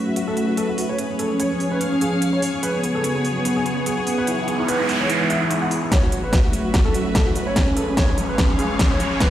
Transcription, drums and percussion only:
0.16 closed hi-hat medium
0.37 closed hi-hat soft
0.57 closed hi-hat medium
0.78 open hi-hat medium
0.99 closed hi-hat medium
1.19 closed hi-hat soft
1.40 closed hi-hat medium
1.60 open hi-hat medium
1.81 closed hi-hat medium
2.01 closed hi-hat soft
2.22 closed hi-hat medium
2.42 open hi-hat medium
2.63 closed hi-hat medium
2.84 closed hi-hat soft
3.04 closed hi-hat medium
3.25 open hi-hat medium
3.45 closed hi-hat medium
3.66 closed hi-hat medium
3.86 closed hi-hat medium
4.07 open hi-hat medium
4.27 closed hi-hat medium
4.48 closed hi-hat soft
4.68 closed hi-hat medium
4.89 open hi-hat medium
5.09 closed hi-hat medium
5.30 closed hi-hat soft
5.51 closed hi-hat medium
5.71 open hi-hat medium
5.92 kick medium
5.92 snare soft
5.92 closed hi-hat medium
6.12 closed hi-hat soft
6.33 kick medium
6.33 snare soft
6.33 closed hi-hat medium
6.53 closed hi-hat medium
6.74 kick medium
6.74 snare soft
6.74 closed hi-hat medium
6.94 closed hi-hat soft
7.15 kick medium
7.15 snare soft
7.15 closed hi-hat medium
7.36 closed hi-hat medium
7.56 kick medium
7.56 snare soft
7.56 closed hi-hat medium
7.77 closed hi-hat soft
7.97 kick medium
7.97 snare medium
7.97 closed hi-hat medium
8.18 closed hi-hat medium
8.38 kick medium
8.38 snare medium
8.38 closed hi-hat medium
8.59 closed hi-hat medium
8.79 kick loud
8.79 snare medium
8.79 closed hi-hat medium
9.00 closed hi-hat medium
9.20 kick medium
9.20 snare medium
9.20 closed hi-hat medium

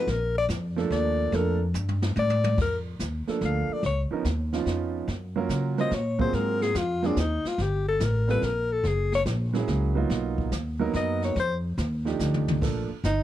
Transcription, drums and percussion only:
0.07 brush sweep soft
0.07 kick soft
0.07 snare soft
0.49 kick soft
0.49 snare medium
0.49 hi-hat pedal medium
0.78 snare soft
0.91 kick soft
0.91 snare soft
1.33 brush sweep medium
1.33 kick soft
1.33 snare soft
1.74 hi-hat pedal medium
1.74 high tom medium
1.88 high tom medium
2.02 snare medium
2.16 high tom medium
2.30 high tom medium
2.44 high tom loud
2.58 brush sweep soft
2.58 kick medium
2.58 snare soft
2.58 crash medium
3.00 kick soft
3.00 snare medium
3.00 hi-hat pedal medium
3.28 snare soft
3.41 kick soft
3.41 snare soft
3.83 brush sweep medium
3.83 kick soft
3.83 snare soft
4.25 kick soft
4.25 snare medium
4.25 hi-hat pedal medium
4.53 snare soft
4.66 kick soft
4.66 snare soft
5.08 brush sweep soft
5.08 kick soft
5.08 snare soft
5.50 kick soft
5.50 snare medium
5.50 hi-hat pedal medium
5.78 snare soft
5.91 kick soft
5.91 snare soft
6.19 kick medium
6.33 brush sweep medium
6.33 kick soft
6.33 snare soft
6.62 snare medium
6.75 kick soft
6.75 snare medium
6.75 hi-hat pedal medium
7.03 snare soft
7.17 kick soft
7.17 snare medium
7.17 hi-hat pedal medium
7.45 snare soft
7.58 brush sweep soft
7.58 kick soft
7.58 snare soft
8.00 kick soft
8.00 snare medium
8.00 hi-hat pedal medium
8.29 snare soft
8.42 kick soft
8.42 snare soft
8.84 brush sweep soft
8.84 kick soft
8.84 snare soft
9.12 snare soft
9.26 kick soft
9.26 snare medium
9.26 hi-hat pedal medium
9.54 snare soft
9.68 kick soft
9.68 snare medium
10.10 brush sweep soft
10.10 kick soft
10.10 snare medium
10.38 kick medium
10.52 kick soft
10.52 snare medium
10.52 hi-hat pedal medium
10.94 kick soft
10.94 snare medium
11.22 snare soft
11.36 brush sweep medium
11.36 kick soft
11.36 snare medium
11.78 kick soft
11.78 snare medium
11.78 hi-hat pedal medium
12.06 snare soft
12.20 snare medium
12.20 hi-hat pedal medium
12.34 mid tom medium
12.48 mid tom loud
12.62 brush sweep soft
12.62 kick medium
12.62 snare soft
12.62 crash medium
13.04 kick soft
13.04 snare medium
13.04 hi-hat pedal medium

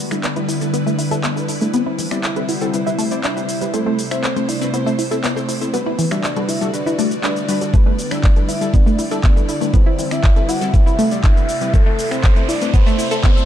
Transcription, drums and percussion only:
0.11 finger snap medium
0.11 closed hi-hat medium
0.11 shaker soft
0.24 clap loud
0.24 closed hi-hat medium
0.24 shaker soft
0.36 closed hi-hat soft
0.49 open hi-hat loud
0.49 shaker medium
0.61 closed hi-hat medium
0.61 shaker soft
0.74 closed hi-hat medium
0.74 shaker soft
0.87 shaker soft
0.99 open hi-hat loud
0.99 shaker medium
1.11 closed hi-hat medium
1.11 shaker soft
1.24 clap loud
1.24 closed hi-hat medium
1.24 shaker soft
1.37 shaker soft
1.49 open hi-hat loud
1.49 shaker medium
1.61 closed hi-hat medium
1.61 shaker soft
1.74 closed hi-hat medium
1.74 shaker soft
1.99 open hi-hat loud
1.99 shaker medium
2.11 finger snap medium
2.11 shaker soft
2.24 clap loud
2.24 closed hi-hat medium
2.24 shaker soft
2.36 closed hi-hat soft
2.49 open hi-hat loud
2.49 shaker medium
2.61 closed hi-hat soft
2.61 shaker soft
2.74 closed hi-hat medium
2.74 shaker soft
2.87 shaker soft
2.99 open hi-hat loud
2.99 shaker medium
3.11 closed hi-hat soft
3.11 shaker soft
3.24 clap loud
3.24 closed hi-hat medium
3.24 shaker soft
3.37 shaker soft
3.49 open hi-hat loud
3.49 shaker medium
3.61 closed hi-hat medium
3.61 shaker soft
3.74 closed hi-hat medium
3.74 shaker soft
3.99 open hi-hat loud
3.99 shaker medium
4.11 finger snap medium
4.11 shaker soft
4.24 clap loud
4.24 closed hi-hat medium
4.24 shaker soft
4.36 closed hi-hat soft
4.49 open hi-hat loud
4.49 shaker medium
4.61 closed hi-hat soft
4.61 shaker soft
4.74 closed hi-hat medium
4.74 shaker soft
4.87 shaker soft
4.99 open hi-hat loud
4.99 shaker medium
5.11 closed hi-hat soft
5.11 shaker soft
5.24 clap loud
5.24 closed hi-hat medium
5.24 shaker soft
5.37 shaker soft
5.49 open hi-hat loud
5.49 shaker medium
5.61 closed hi-hat soft
5.61 shaker soft
5.74 closed hi-hat medium
5.74 shaker soft
5.99 open hi-hat loud
5.99 shaker medium
6.11 finger snap medium
6.11 closed hi-hat soft
6.11 shaker soft
6.24 clap loud
6.24 closed hi-hat medium
6.24 shaker soft
6.36 closed hi-hat soft
6.49 open hi-hat loud
6.49 shaker medium
6.61 closed hi-hat soft
6.61 shaker soft
6.74 closed hi-hat medium
6.74 shaker soft
6.87 shaker soft
6.99 open hi-hat loud
6.99 shaker medium
7.11 closed hi-hat soft
7.11 shaker soft
7.24 clap loud
7.24 closed hi-hat medium
7.24 shaker soft
7.36 closed hi-hat soft
7.36 shaker soft
7.49 open hi-hat loud
7.49 shaker medium
7.61 closed hi-hat soft
7.61 shaker soft
7.74 kick loud
7.74 closed hi-hat medium
7.74 shaker soft
7.99 open hi-hat loud
7.99 shaker medium
8.11 finger snap medium
8.11 closed hi-hat soft
8.11 shaker soft
8.24 kick loud
8.24 clap loud
8.24 closed hi-hat medium
8.24 shaker soft
8.36 closed hi-hat soft
8.49 open hi-hat loud
8.49 shaker medium
8.61 closed hi-hat soft
8.61 shaker soft
8.74 kick loud
8.74 closed hi-hat medium
8.74 shaker soft
8.87 shaker soft
8.99 open hi-hat loud
8.99 shaker medium
9.11 closed hi-hat soft
9.11 shaker soft
9.24 kick loud
9.24 clap loud
9.24 closed hi-hat medium
9.24 shaker soft
9.37 shaker soft
9.49 open hi-hat loud
9.49 shaker medium
9.61 closed hi-hat soft
9.61 shaker soft
9.74 kick loud
9.74 closed hi-hat medium
9.74 shaker soft
9.99 open hi-hat loud
9.99 shaker medium
10.11 finger snap medium
10.11 closed hi-hat medium
10.11 shaker soft
10.24 kick loud
10.24 clap loud
10.24 closed hi-hat medium
10.24 shaker soft
10.36 closed hi-hat soft
10.49 open hi-hat loud
10.49 shaker medium
10.61 closed hi-hat medium
10.61 shaker soft
10.74 kick loud
10.74 closed hi-hat medium
10.74 shaker soft
10.87 shaker soft
10.99 open hi-hat loud
10.99 shaker medium
11.11 closed hi-hat medium
11.11 shaker soft
11.24 kick loud
11.24 clap loud
11.24 closed hi-hat medium
11.24 shaker soft
11.37 shaker soft
11.49 open hi-hat loud
11.49 shaker medium
11.61 closed hi-hat medium
11.61 shaker soft
11.74 kick loud
11.74 closed hi-hat medium
11.74 shaker soft
11.99 open hi-hat loud
11.99 shaker medium
12.11 finger snap medium
12.11 closed hi-hat medium
12.11 shaker soft
12.24 kick loud
12.24 clap loud
12.24 closed hi-hat medium
12.24 shaker soft
12.36 closed hi-hat soft
12.49 open hi-hat loud
12.49 shaker medium
12.61 closed hi-hat medium
12.61 shaker soft
12.74 kick loud
12.74 closed hi-hat medium
12.74 shaker soft
12.87 shaker soft
12.99 open hi-hat loud
12.99 shaker medium
13.11 closed hi-hat medium
13.11 shaker soft
13.24 kick loud
13.24 clap loud
13.24 closed hi-hat medium
13.24 shaker soft
13.37 shaker soft

